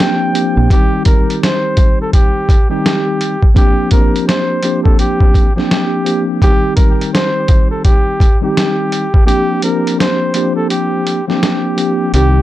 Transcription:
Already playing: F3 A#3 C4 D4 G4 G5
0.00 snare, closed hi-hat
0.33 F3 A#3 C4 D4 G4, closed hi-hat
0.57 A#1
0.70 D#3 G3 C4 D#4 G4, kick, closed hi-hat
1.05 A#4, kick, closed hi-hat
1.30 closed hi-hat
1.43 C5, snare, closed hi-hat
1.77 kick, closed hi-hat
2.01 A4
2.13 G4, kick, closed hi-hat
2.49 kick, closed hi-hat
2.69 D#3 G3 C4 D#4 G4
2.86 snare, closed hi-hat
3.21 closed hi-hat
3.43 kick
3.54 F3 A#3 C4 D4 G4, kick, closed hi-hat
3.91 F3 A#3 C4 D4 G4 A#4, kick, closed hi-hat
4.16 closed hi-hat
4.28 C5, snare, closed hi-hat
4.63 F3 A#3 C4 D4 G4, closed hi-hat
4.84 A4, kick
4.99 G4, closed hi-hat
5.21 kick
5.34 kick, closed hi-hat
5.56 F3 A#3 C4 D4 G4, snare
5.71 snare, closed hi-hat
6.05 F3 A#3 C4 D4 G4, closed hi-hat
6.42 D#3 G3 C4 D#4 G4, kick, closed hi-hat
6.76 A#4, kick, closed hi-hat
7.01 closed hi-hat
7.13 C5, snare, closed hi-hat
7.48 kick, closed hi-hat
7.71 A4
7.84 G4, kick, closed hi-hat
8.20 kick, closed hi-hat
8.41 D#3 G3 C4 D#4 G4
8.57 snare, closed hi-hat
8.92 closed hi-hat
9.14 kick
9.26 F3 A#3 C4 D4 G4, closed hi-hat
9.62 F3 A#3 C4 D4 G4 A#4, closed hi-hat
9.87 closed hi-hat
9.99 C5, snare, closed hi-hat
10.34 F3 A#3 C4 D4 G4, closed hi-hat
10.56 A4
10.70 G4, closed hi-hat
11.07 closed hi-hat
11.28 F3 A#3 C4 D4 G4, snare
11.43 snare, closed hi-hat
11.76 F3 A#3 C4 D4 G4, closed hi-hat
12.14 C2 D#3 G3 C4 D#4 G4, closed hi-hat

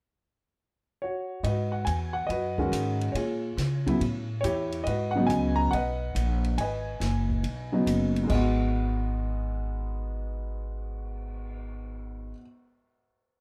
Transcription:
1.02 F#4 C#5
1.43 G#2 F#4 B4 D#5, ride
1.72 F#5
1.85 E2 G#5, hi-hat pedal, ride
2.13 F#5
2.27 F#2 F#4 B4 D#5, ride
2.58 D#3 G#3 C#4 F#4, kick
2.72 G#2, hi-hat pedal, ride
3.01 ride
3.12 A#2 F4 G#4 C#5, ride
3.57 C#3, snare, hi-hat pedal, ride
3.86 C#3 F#3 B3 E4, kick, ride
4.01 A2, ride
4.41 E2 E4 G4 C#5, hi-hat pedal, ride
4.72 ride
4.84 G#2 B4 D#5, ride
4.88 F#4
5.11 F#5
5.16 C#3 F#3 B3 D#4
5.27 C#2 G#5, hi-hat pedal, ride
5.56 A#5
5.71 B1 D#5 F#5, ride
5.75 B4
6.15 A#1, hi-hat pedal, ride
6.44 ride
6.58 G#1 B4 D#5 G#5, ride
7.00 F#1, snare, hi-hat pedal, ride
7.30 kick
7.43 B1, ride
7.72 C#3 F#3 B3 D#4
7.86 F#1, hi-hat pedal, ride
8.16 ride
8.23 G#2
8.27 G#1 G#3 B3 D#5, kick, crash
8.35 F#4
8.58 cymbal swell

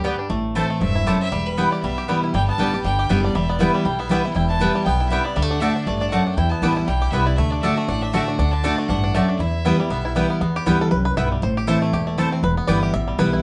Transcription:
Already playing: D2 G4
0.04 G2 G3 B3 G4 D5 G5
0.19 D4
0.30 A1 A2 A3
0.55 E3 A3 C4 E4 A4 C5 A5
0.70 A3
0.81 E1 G2 C4 E5
0.95 E4
1.06 F#2 A3 E4 G4 C5 A5
1.21 C4 E5
1.32 E1 E2 G3
1.46 B4
1.57 E3 G3 B3 E4 B4 G5
1.71 G4 D5
1.83 B1 B2 G3 E5
1.98 G4
2.08 E3 G3 B3 E4 B4 G5
2.24 E4
2.34 G1 G2 G3 G5
2.48 B3 A5
2.58 A1 D3 G3 B3 D4 G4 D5 G5
2.73 B3 G4
2.84 G1 D3 G3 G5
2.99 G4
3.09 F#1 D3 G3 B3 G4 D5 E5 G5
3.24 D4 D5
3.35 E1 E2 G3 E5
3.49 B3 D5
3.59 E3 G3 B3 E4 B4 E5 G5
3.74 G3
3.85 B1 B2 E4 G5
3.99 B3 E5
4.09 E3 G3 B3 E4 B4 E5 G5
4.24 B3 E4
4.34 E1 E2 E4 G5
4.49 E3 A5
4.60 E3 G3 B3 E4 B4 G5
4.75 G3
4.85 B1 B2 B3 G5
5.00 E4
5.09 C3 G3 B3 E4 B4 E5 G5
5.24 B3 D5
5.36 D2 D3 G3 E5
5.42 A3
5.49 D4 F#5
5.60 D3 A3 D4 F#4 D5 E5 A5
5.76 D4
5.85 A1 G2 A3 D5
5.99 D4 D5
6.10 F#2 A3 F#4 D5 F#5 A5
6.27 D4
6.35 E2 E4 G5
6.50 B3 A5
6.62 A1 E3 G3 B3 E4 G4 B4 G5
6.77 E4
6.86 B1 B2 G3 G5
7.02 G4
7.11 C2 C3 B3 E4 B4 E5 G5
7.25 E4 D5
7.36 D2 D3 A3 E5
7.51 D4 D5
7.61 D3 A3 D4 F#4 D5 E5 A5
7.77 A3
7.87 A1 A2 D4 F#5
8.02 D4 E5
8.13 D3 A3 D4 F#4 D5 E5 A5
8.28 D4
8.37 D2 D3 D4 F#5
8.51 D3 A5
8.64 D3 A3 D4 F#4 D5 A5
8.78 A3
8.88 A1 G2 D4 F#5
9.04 D4
9.14 F#2 A3 F#4 D5 E5 A5
9.28 D4 D5
9.39 E2 E4 E5
9.65 E3 G3 B3 E4 B4 G5
9.78 G3 B3 E4
9.90 B1 B2 B3 E5
10.05 E4
10.15 E3 G3 B3 E4 B4 G5
10.30 B3
10.41 E2 B3
10.56 G4
10.66 D2 E3 G3 B3 E4 B4 G5
10.81 A4
10.91 C2 F#2 B4
11.05 B4
11.17 B1 G2 B3 E4 B4 E5 G5
11.32 G3
11.42 A1 A2 C5
11.57 G4
11.67 E3 A3 C4 E4 C5 A5
11.82 A3
11.93 E1 E2 G4
12.07 A3
12.18 E3 A3 C4 E4 A4 C5 A5
12.32 C4
12.43 E1 E2 B4
12.57 B3
12.67 G1 E3 G3 B3 E4 B4 D5 G5
12.83 G4
12.94 A1 B2 E5
13.08 G3
13.18 B1 E3 G3 B3 E4 B4 G5
13.33 E4

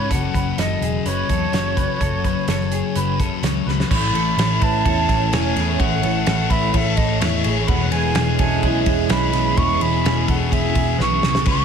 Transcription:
Already playing: G#2 C#4 C#5
0.09 F#1 F#2 C#3 F#3 A3 C#4 F#4 A4 F#5, kick, closed hi-hat
0.34 F#1 B4, kick, closed hi-hat
0.56 F#1 F#2 C#3 F#3 A4 D#5, snare, closed hi-hat
0.81 E1 G#4, closed hi-hat
1.04 F#1 F#2 C#3 F#3 B4 C#5, closed hi-hat
1.27 E2 C#3 F#3 A4, kick, closed hi-hat
1.52 F#1 C#5, snare, closed hi-hat
1.75 C#3 F#3 A3 C#4 F#4 B4, kick, closed hi-hat
1.79 F#3
1.99 F#1 F#2 C#3 F#3 A3 C#4 F#4 A4, kick, closed hi-hat
2.24 B4, kick, closed hi-hat
2.47 F#1 F#2 C#3 F#3 A4, snare, closed hi-hat
2.61 snare
2.72 G#4, closed hi-hat
2.95 F#1 F#2 C#3 F#3 B4, closed hi-hat
3.19 C#3 F#3 A4, kick, closed hi-hat
3.43 C#2 C#5, snare, closed hi-hat
3.66 C#2 C#3 F#3 A3 C#4 F#4 B4, snare
3.80 snare
3.89 A1 A2 E3 A3 C#4 E4 A4 C#5, kick, crash
3.94 B5
4.13 A1 E3 A3 A4, ride
4.37 A1 A4, snare, ride
4.61 A1 B4 A5, kick, ride
4.85 E2 A2 E3 A3 A4, kick, ride
5.08 A1 A4, kick, snare, ride
5.33 E1 A2 E3 A3 C#5 G#5, snare, ride
5.56 E2 E3 A3 G#4, snare, ride
5.79 A1 A2 E3 A3 A4 C#5 F#5, kick, ride
6.02 A1 E3 A3 A4, ride
6.26 A1 A4, snare, ride
6.50 A1 B4 E5, kick, ride
6.74 A1 A2 E3 A3 A4 E5, kick, ride
6.97 A1 A4 D#5, kick, ride
7.20 E2 A2 E3 C#5 E5, snare, ride
7.24 A3
7.44 A1 E3 A3 G#4, ride
7.67 E1 E2 B2 E3 G#3 C#4 G#4 B4 F#5, kick, ride
7.91 E1 B2 E3 G#4 G#5, ride
8.15 E1 G#4, snare, ride
8.39 E1 A4 G#5, kick, ride
8.62 B1 E2 B2 E3 G#4, kick, ride
8.86 E1 G#4, kick, ride
9.09 B1 E2 B2 E3 B4 B5, snare, ride
9.32 B1 B2 E3 G#4, snare, ride
9.56 E1 E2 B2 E3 B4 C#6, kick, ride
9.80 E1 B2 E3 G#4 B5, ride
10.04 E1 G#4, snare, ride
10.27 E1 A4 F#5, kick, ride
10.50 E1 E2 B2 G#4 E5, kick, ride
10.54 E3
10.74 E1 G#4, kick, ride
10.98 B1 E2 B2 B4 C#6, snare
11.02 E3
11.22 C2 B2 E3 G#4, snare
11.35 snare
11.45 C#2 C#3 F3 G#3 B3 C#4 F4 B4, kick, crash
11.50 C#6

